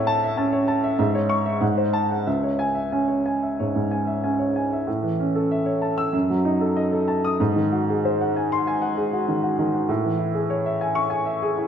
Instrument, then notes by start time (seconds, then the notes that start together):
grand piano
Already playing: A2 C#5 E5
0.07 A5
0.23 E5
0.37 C#4 A5
0.53 C#5
0.68 A5
0.84 E5
0.98 G#2 E5
1.15 C#5
1.29 C#6
1.45 E5
1.61 G#2 F#5
1.77 C5
1.93 A5
2.11 F#5
2.27 C#2 E5
2.43 C#5
2.59 G#5
2.75 E5
2.92 C#4 G#5
3.08 C#5
3.26 G#5
3.42 E5
3.59 G#2 C#5
3.75 G#2
3.91 G#5
4.07 E5
4.24 C#4 G#5
4.39 C#5
4.56 G#5
4.72 E5
4.87 A2
5.03 E3
5.20 C#4
5.35 A4
5.51 E5
5.66 C#5
5.82 A5
5.98 E6
6.13 F#2
6.30 F#3
6.45 D#4
6.61 A4
6.76 D#5
6.93 A4
7.08 A5
7.24 D#6
7.40 G#2
7.56 D#3
7.72 F#4
7.90 G#4
8.05 C5
8.21 F#5
8.36 G#5
8.52 C6
8.67 G#5
8.82 F#5
8.97 G#4
9.13 F#4
9.28 D#3
9.43 F#4
9.59 D#3
9.74 F#4
9.89 A2
10.04 E3
10.19 E4
10.35 G#4
10.50 C#5
10.66 E5
10.81 G#5
10.95 C#6
11.10 G#5
11.26 E5
11.42 G#4
11.58 E4